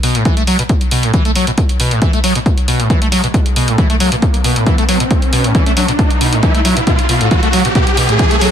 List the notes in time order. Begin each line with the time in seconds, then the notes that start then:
Already playing: riser
0.03 B2, open hi-hat
0.15 A2, closed hi-hat
0.25 E3, kick, closed hi-hat
0.37 A3, closed hi-hat
0.47 F#3, open hi-hat
0.59 B2, closed hi-hat
0.69 kick, closed hi-hat
0.81 closed hi-hat
0.91 B2, open hi-hat
1.03 A2, closed hi-hat
1.14 E3, kick, closed hi-hat
1.25 A3, closed hi-hat
1.35 F#3, open hi-hat
1.47 B2, closed hi-hat
1.58 kick, closed hi-hat
1.69 closed hi-hat
1.80 B2, open hi-hat
1.91 A2, closed hi-hat
2.02 E3, kick, closed hi-hat
2.13 A3, closed hi-hat
2.24 F#3, open hi-hat
2.35 B2, closed hi-hat
2.46 kick, closed hi-hat
2.58 closed hi-hat
2.68 B2, open hi-hat
2.80 A2, closed hi-hat
2.90 E3, kick, closed hi-hat
3.02 A3, closed hi-hat
3.12 F#3, open hi-hat
3.24 B2, closed hi-hat
3.34 kick, closed hi-hat
3.46 closed hi-hat
3.56 B2, open hi-hat
3.68 A2, closed hi-hat
3.78 E3, kick, closed hi-hat
3.90 A3, closed hi-hat
4.00 F#3, open hi-hat
4.12 B2, closed hi-hat
4.22 kick, closed hi-hat
4.34 closed hi-hat
4.44 B2, open hi-hat
4.56 A2, closed hi-hat
4.66 E3, kick, closed hi-hat
4.78 A3, closed hi-hat
4.89 F#3, open hi-hat
5.00 B2, closed hi-hat
5.11 kick, closed hi-hat
5.22 closed hi-hat
5.33 B2, open hi-hat
5.44 A2, closed hi-hat
5.55 E3, kick, closed hi-hat
5.66 A3, closed hi-hat
5.77 F#3, open hi-hat
5.88 B2, closed hi-hat
5.99 kick, closed hi-hat
6.11 closed hi-hat
6.21 B2, open hi-hat
6.32 A2, closed hi-hat
6.43 E3, kick, closed hi-hat
6.55 A3, closed hi-hat
6.65 F#3, open hi-hat
6.77 B2, closed hi-hat
6.87 B2, kick, closed hi-hat
6.99 closed hi-hat
7.09 B2, open hi-hat
7.21 A2, closed hi-hat
7.31 E3, kick, closed hi-hat
7.43 A3, closed hi-hat
7.53 F#3, open hi-hat
7.65 B2, closed hi-hat
7.75 B2, kick, closed hi-hat
7.87 closed hi-hat
7.97 B2, open hi-hat
8.09 A2, closed hi-hat
8.19 E3, kick, closed hi-hat
8.31 A3, closed hi-hat
8.41 F#3, open hi-hat